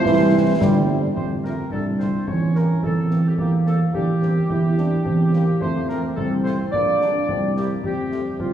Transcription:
Already playing: A3 C5 C6
0.05 C2 E3, concert bass drum, snare
0.33 G3 C4 E4
0.60 G1 G3, concert bass drum, snare
0.88 G3 C4 E4
1.16 F2 A3 C5, concert bass drum
1.44 C3 A3 C4 F4 A#4, snare
1.71 C2 D4 A4, concert bass drum
1.99 C3 A3 C4 F4 C5, snare
2.27 E2 C#4 C#5, concert bass drum
2.55 E3 A#3 G4 A#4, snare
2.83 E2 C4 A4, concert bass drum
3.10 E3 A#3 G4, snare
3.27 G4
3.38 E2 A#3 G4, concert bass drum
3.65 G3 A#3 C4 G4 A4, snare
3.94 E2 D4 G4, concert bass drum
4.21 G3 A#3 C4 G4, snare
4.50 E2 E4, concert bass drum
4.77 G3 A#3 C4 D4 G4, snare
5.05 E2 C4, concert bass drum
5.33 G3 A#3 C4 G4, snare
5.61 F2 A3 C5, concert bass drum
5.89 A3 C4 F4 A#4, snare
6.17 C2 C4 A4, concert bass drum
6.44 A3 C4 F4 C5, snare
6.71 A#1 A#3 D5, concert bass drum
7.00 D3 G3 A#3 D4, snare
7.29 C2 C4, concert bass drum
7.56 C3 G3 A#3 E4 G4, snare
7.84 F2 C4 G4, concert bass drum
8.11 C3 F3 A3 F4, snare
8.39 C2 C4 F4, concert bass drum

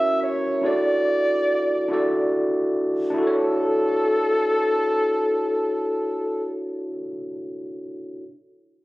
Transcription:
Already playing: C#4 E4 F#4 A#4 C#5 E5
0.23 C#5
0.62 D4 E4 F#4 A4 D5
0.66 D5
1.88 D4 E4 F#4 A4
1.93 D5
3.10 D4 E4
3.18 F#4 A4
3.23 A4
3.27 C#5

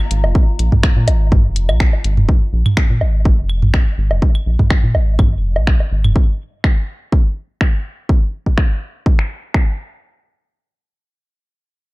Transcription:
Already playing: A#3 F4 F5 A#5
0.11 G#1, closed hi-hat
0.24 F1, low woodblock
0.35 kick
0.59 A#1, closed hi-hat
0.72 kick, mid tom
0.83 finger snap, kick, claves
0.97 A#2
1.08 G#1, closed hi-hat, low woodblock
1.32 kick, mid tom
1.45 F1
1.56 closed hi-hat
1.69 A#1, claves, low woodblock
1.80 finger snap, kick
1.93 low woodblock
2.04 G#1, closed hi-hat
2.17 F1, mid tom
2.29 kick
2.53 A#1
2.66 mid tom, claves
2.77 finger snap, kick
2.90 A#2
3.01 G#1, low woodblock
3.25 kick
3.38 F1
3.50 claves
3.62 A#1, mid tom
3.74 finger snap, kick, low woodblock
3.98 G#1
4.11 F1, low woodblock
4.22 kick
4.35 claves
4.46 A#1
4.59 kick, mid tom
4.70 finger snap, kick
4.84 A#2
4.95 G#1, low woodblock
5.19 kick, mid tom, claves
5.32 F1
5.56 A#1, low woodblock
5.67 finger snap, kick
5.80 low woodblock
5.92 G#1
6.04 F1, mid tom, claves
6.16 kick
6.64 finger snap, kick
7.12 kick
7.61 finger snap, kick
8.09 kick
8.46 kick
8.58 finger snap, kick
9.06 kick
9.19 finger snap
9.54 finger snap, kick

